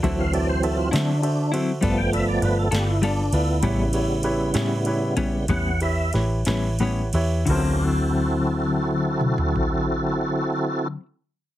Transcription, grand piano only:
\new Staff \with { instrumentName = "Grand piano" } { \time 12/8 \key d \mixolydian \tempo 4. = 63 <fis' a' c'' e''>8 <fis' a' c'' e''>8 <fis' a' c'' e''>8 <fis' a' c'' e''>8 <fis' a' c'' e''>8 <fis' a' c'' e''>8 <f' a' b' d''>8 <f' a' b' d''>8 <f' a' b' d''>8 <f' a' b' d''>8 <f' a' b' d''>8 <f' a' b' d''>8 | <e' g' b' cis''>8 <e' g' b' cis''>8 <e' g' b' cis''>8 <e' g' b' cis''>8 <e' g' b' cis''>8 <e' g' b' cis''>8 <e' g' b' cis''>8 <e' g' b' cis''>8 <e' g' b' cis''>8 <e' g' b' cis''>8 <e' g' b' cis'' fis''>8 <e' g' b' cis'' e''>8 | <e' fis' a' c''>1. | }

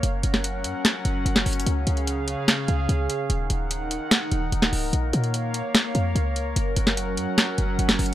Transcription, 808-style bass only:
\new Staff \with { instrumentName = "808-style bass" } { \clef bass \time 4/4 \key ges \lydian \tempo 4 = 147 ges,,8 ges,,4 ges,16 r8. ges,,8 ges,,8 ges,,8 | des,8 des,4~ des,16 r8. des,8 des,8 r8 | ees,,8 ees,,4~ ees,,16 r8. ees,,8 ees,,8 des,,8 | bes,,8 bes,4~ bes,16 r8. f,8 des,4 |
ges,,8 ges,,4 ges,16 r8. ges,,8 ges,,8 ges,,8 | }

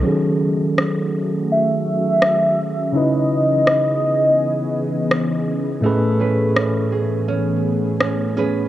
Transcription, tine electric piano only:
\new Staff \with { instrumentName = "Tine electric piano" } { \time 4/4 \key fis \dorian \tempo 4 = 83 <dis fis cis' gis' a'>1 | <cis cis' dis' e' b'>1 | <a, a cis' gis' b'>1 | }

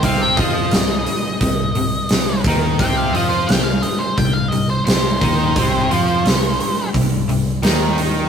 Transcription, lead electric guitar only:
\new Staff \with { instrumentName = "Lead electric guitar" } { \time 4/4 \key c \minor \tempo 4 = 87 f''16 g''16 ees''2. r8 | g''16 f''16 ees''16 c''16 g''16 f''16 ees''16 c''16 g''16 f''16 ees''16 c''16 c''4~ | c''2 r2 | }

